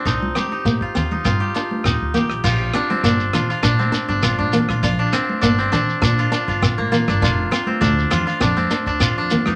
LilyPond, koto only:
\new Staff \with { instrumentName = "Koto" } { \time 4/4 \key bes \major \tempo 4 = 101 ees'8 g'16 ees'8 f'16 f'16 ees'16 f'16 g'16 f'8 ees'8 g'8 | f'8 d'16 c'16 d'8 f'16 f'16 d'16 c'8 d'16 f'16 d'8 f'16 | f'16 d'16 c'8 d'16 c'16 d'8 d'16 f'16 d'16 f'8 bes16 f'16 d'16 | f'8 f'16 c'16 d'8 f'16 f'16 d'16 c'8 d'16 f'16 d'8 ees'16 | }